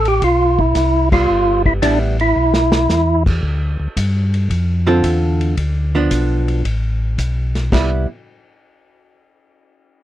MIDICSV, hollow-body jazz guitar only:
0, 0, Header, 1, 2, 480
1, 0, Start_track
1, 0, Key_signature, 0, "major"
1, 0, Tempo, 536193
1, 1153, Time_signature, 4, 2, 24, 8
1, 8979, End_track
2, 0, Start_track
2, 0, Title_t, "Hollow-body jazz guitar"
2, 0, Program_c, 0, 26
2, 1007, Note_on_c, 0, 55, 49
2, 1010, Note_on_c, 0, 59, 53
2, 1604, Note_off_c, 0, 55, 0
2, 1606, Note_off_c, 0, 59, 0
2, 1630, Note_on_c, 0, 55, 59
2, 1637, Note_on_c, 0, 59, 61
2, 1638, Note_on_c, 0, 64, 61
2, 1929, Note_off_c, 0, 55, 0
2, 1933, Note_off_c, 0, 59, 0
2, 1933, Note_off_c, 0, 64, 0
2, 4357, Note_on_c, 0, 50, 68
2, 4361, Note_on_c, 0, 60, 76
2, 4362, Note_on_c, 0, 65, 74
2, 4367, Note_on_c, 0, 69, 72
2, 4958, Note_off_c, 0, 50, 0
2, 4960, Note_off_c, 0, 60, 0
2, 4960, Note_off_c, 0, 65, 0
2, 4963, Note_off_c, 0, 69, 0
2, 5326, Note_on_c, 0, 53, 59
2, 5330, Note_on_c, 0, 59, 66
2, 5337, Note_on_c, 0, 62, 71
2, 5922, Note_off_c, 0, 53, 0
2, 5924, Note_off_c, 0, 59, 0
2, 5928, Note_off_c, 0, 62, 0
2, 6915, Note_on_c, 0, 55, 60
2, 6923, Note_on_c, 0, 59, 63
2, 6923, Note_on_c, 0, 64, 68
2, 7211, Note_off_c, 0, 55, 0
2, 7215, Note_off_c, 0, 59, 0
2, 7215, Note_off_c, 0, 64, 0
2, 8979, End_track
0, 0, End_of_file